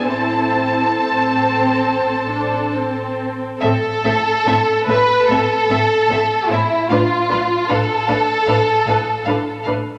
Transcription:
X:1
M:4/4
L:1/16
Q:1/4=73
K:Am
V:1 name="Violin section"
a12- a2 z2 | e2 e2 e2 e2 e2 e2 e2 e2 | f2 f2 f2 f2 f2 f2 f2 f2 |]
V:2 name="Violin section"
[Ac]12- [Ac]3 z | A6 B2 A6 E2 | F4 A8- A2 z2 |]
V:3 name="Viola section"
[CE]4 C6 D2 C4 | [CA]2 [CA]2 [CA]2 [CA]2 [CA]2 [CA]2 [CA]2 [CA]2 | [DB]2 [DB]2 [DB]2 [DB]2 [DB]2 [DB]2 [DB]2 [DB]2 |]
V:4 name="Cello section" clef=bass
C12- C2 z2 | A,,2 A,,2 A,,2 A,,2 A,,2 A,,2 A,,2 A,,2 | A,,2 A,,2 A,,2 A,,2 A,,2 A,,2 A,,2 A,,2 |]
V:5 name="Double bass section" clef=bass
A,,,12- A,,,3 z | A,,,2 A,,,2 A,,,2 A,,,2 A,,,2 A,,,2 A,,,2 A,,,2 | A,,,2 A,,,2 A,,,2 A,,,2 A,,,2 A,,,2 A,,,2 A,,,2 |]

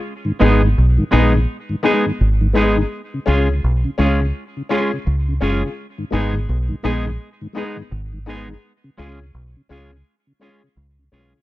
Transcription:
X:1
M:4/4
L:1/16
Q:"Swing 16ths" 1/4=84
K:G#dor
V:1 name="Upright piano"
z2 [B,DG] z3 [B,DG] z3 [B,DG] z3 [B,DG] [DG] | z2 [CEG] z3 [CEG] z3 [CEG] z3 [CEG] [EG] | z2 [B,DG] z3 [B,DG] z3 [B,DG] z3 [B,DG] [DG] | z2 [CEG] z3 [CEG] z3 [CEG] z3 [CEG] [EG] |]
V:2 name="Clean electric guitar"
z2 [G,B,DG]2 z2 [G,B,DG]2 z2 [G,B,DG]2 z2 [G,B,DG]2 | z2 [G,CEG]2 z2 [G,CEG]2 z2 [G,CEG]2 z2 [G,CEG]2 | z2 [G,B,DG]2 z2 [G,B,DG]2 z2 [G,B,DG]2 z2 [G,B,DG]2 | z2 [G,CEG]2 z2 [G,CEG]2 z2 [G,CEG]2 z2 [G,CEG]2 |]
V:3 name="Tonewheel organ"
z2 [G,B,D]2 z2 [G,B,D]2 z2 [G,B,D]2 z2 [G,B,D]2 | z2 [G,CE]2 z2 [G,CE]2 z2 [G,CE]2 z2 [G,CE]2 | z2 [G,B,D]2 z2 [G,B,D]2 z2 [G,B,D]2 z2 [G,B,D]2 | z2 [G,CE]2 z2 [G,CE]2 z2 [G,CE]2 z2 [G,CE]2 |]
V:4 name="Tonewheel organ" clef=bass
z [G,,D,] z [G,,D,] z [G,,D,] z [G,,D,] z [G,,D,] z [G,,D,] z [G,,D,] z [G,,D,] | z C, z C, z C, z C, z C, z C, z C, z C, | z [G,,D,] z [G,,D,] z [G,,D,] z [G,,D,] z [G,,D,] z [G,,D,] z [G,,D,] z [G,,D,] | z C, z C, z C, z C, z C, z C, z C, z C, |]
V:5 name="Fingered electric bass" clef=bass
z2 G,,,2 B,,, z A,,,2 z4 G,,,4 | z2 C,,2 B,,, z C,,2 z4 C,,2 F,,, z | z2 G,,,2 B,,, z A,,,2 z4 G,,,4 | z2 C,,2 B,,, z C,,2 z4 C,,2 B,,, z |]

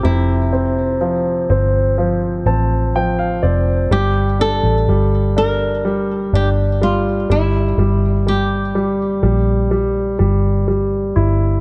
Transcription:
X:1
M:4/4
L:1/16
Q:1/4=62
K:Gdor
V:1 name="Nylon-string guitar"
E12 z4 | G2 A4 B4 G2 F2 E2- | E2 G8 z6 |]
V:2 name="Grand piano"
z8 z2 a2 g f d2 | z16 | z16 |]
V:3 name="Grand piano" clef=bass
[C,F,C]2 C2 F,2 C2 F,2 C2 F,2 C2 | G,2 D2 G,2 D2 G,2 D2 G,2 G,2 | G,2 G,2 G,2 G,2 G,2 G,2 G,2 E2 |]
V:4 name="Fingered electric bass" clef=bass
F,,,6 G,,,4 A,,,4 F,,,2 | G,,,3 A,,, G,,,6 G,,,4 G,,,2 | G,,,6 B,,,4 G,,,4 G,,,2 |]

